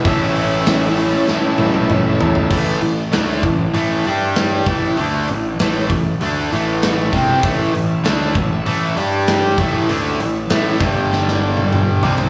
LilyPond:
<<
  \new Staff \with { instrumentName = "Tonewheel organ" } { \time 4/4 \key a \major \tempo 4 = 98 << { <cis' e' a' e''>1 | r1 | r1 | <cis' e' a' e''>2~ <cis' e' a' e''>8 <d' g' d''>4 <cis' e' a' e''>8~ |
<cis' e' a' e''>4. <d' g' d''>2 r8 | } \\ { r1 | r1 | r1 | <a b c' d' e' f' g' a' b' c'' d''>8 r2. r8 |
r1 | } >> }
  \new Staff \with { instrumentName = "Steel-string acoustic guitar" } { \time 4/4 \key a \major <a, e a cis' e'>4 <e a cis' e'>8 <a cis' e'>8 <a, e a cis' e'>4 <e a cis' e'>8 <a cis' e'>8 | r1 | r1 | r1 |
r1 | }
  \new Staff \with { instrumentName = "Distorted electric guitar" } { \clef bass \time 4/4 \key a \major <a, e a cis' e'>1 | <a, e a>8 <a, e>8 <d a d'>8 <a, e>8 <a, e a>8 <g d' g'>4 <a, e a>8 | <d a d'>8 <a, e>8 <a, e a>8 <a, e>8 <d a d'>8 <a, e a>4 <c g c'>8 | <a, e a>8 <a, e>8 <d a d'>8 <a, e>8 <a, e a>8 <g d' g'>4 <a, e a>8 |
<d a d'>8 <a, e>8 <a, e a>8 <g, d g>2 <c g c'>8 | }
  \new Staff \with { instrumentName = "Picked electric bass" } { \clef bass \time 4/4 \key a \major a,,2 r8 a,,4 e,8 | a,,8 a,,8 d,8 a,,8 a,,8 g,4 a,,8 | d,8 a,,8 a,,8 a,,8 d,8 a,,4 c,8 | a,,8 a,,8 d,8 a,,8 a,,8 g,4 a,,8 |
d,8 a,,8 a,,8 g,,2 c,8 | }
  \new DrumStaff \with { instrumentName = "Drums" } \drummode { \time 4/4 <hho bd>8 hho8 <hho sn>8 hho8 sn8 tommh16 tommh16 toml8 tomfh16 tomfh16 | <cymc bd>8 hho8 <hho sn>8 <hho bd>8 hho8 hho8 <hho sn>8 <hho bd>8 | hho8 hho8 <hho sn>8 <hho bd>8 hho8 hho8 <hho sn>8 <hho bd>8 | <hho bd>8 hho8 <hho sn>8 <hho bd>8 hho8 hho8 <hho sn>8 <hho bd>8 |
hho8 hho8 <hho sn>8 <hho bd>8 sn16 sn8 tommh16 toml8 tomfh16 tomfh16 | }
>>